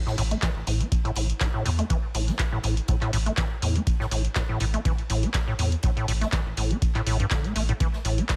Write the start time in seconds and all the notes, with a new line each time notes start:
0.07 A2, snare
0.18 A1 A2, open hi-hat, ride
0.31 A3, closed hi-hat
0.42 E3, kick, snare, clap, closed hi-hat, ride
0.56 A1
0.67 A1 A2, open hi-hat, ride
0.80 C4, closed hi-hat
0.92 kick, closed hi-hat, ride
1.05 A2, closed hi-hat
1.15 A1 A2, open hi-hat, ride
1.30 closed hi-hat
1.40 A2, kick, snare, clap, closed hi-hat, ride
1.54 A2
1.65 E2 A2, open hi-hat, ride
1.78 A3, closed hi-hat, ride
1.90 E3, kick, closed hi-hat, ride
2.14 A1 A2, open hi-hat, ride
2.28 C4, snare, closed hi-hat
2.39 kick, snare, clap, closed hi-hat, ride
2.52 A1 A2
2.63 A1 A2, open hi-hat, ride
2.77 closed hi-hat
2.88 A2, kick, closed hi-hat, ride
3.01 A2, clap, closed hi-hat
3.13 A1 A2, open hi-hat, ride
3.26 A3, closed hi-hat
3.37 E3, kick, snare, clap, closed hi-hat, ride
3.62 E2 A2, open hi-hat, ride
3.75 C4, closed hi-hat
3.87 kick, closed hi-hat, ride
4.00 A2, snare
4.11 A1 A2, open hi-hat, ride
4.25 closed hi-hat
4.35 A2, kick, snare, clap, closed hi-hat, ride
4.49 A1 A2
4.60 A1 A2, open hi-hat, ride
4.74 A3, closed hi-hat
4.85 E3, kick, closed hi-hat, ride
4.98 closed hi-hat
5.10 A1 A2, open hi-hat, ride
5.23 C4, closed hi-hat
5.34 kick, snare, clap, closed hi-hat, ride
5.48 A2
5.59 E2 A2, open hi-hat, ride
5.72 closed hi-hat, ride
5.83 A2, kick, closed hi-hat, ride
5.97 A2, closed hi-hat
6.08 A1 A2, open hi-hat, ride
6.21 A3, snare, closed hi-hat
6.32 E3, kick, snare, clap, closed hi-hat, ride
6.46 A1
6.57 A1 A2, open hi-hat, ride
6.70 C4, closed hi-hat
6.82 kick, closed hi-hat, ride
6.95 A2, clap, closed hi-hat
7.06 A1 A2, open hi-hat, ride
7.20 G2, closed hi-hat
7.31 D3, kick, snare, clap, closed hi-hat, ride
7.44 A3, closed hi-hat
7.56 A1 A3, open hi-hat, ride
7.69 A2, closed hi-hat
7.80 E3, kick, closed hi-hat, ride
7.93 snare
8.05 A1 A2, open hi-hat, ride
8.18 C4, closed hi-hat
8.29 kick, snare, clap, closed hi-hat, ride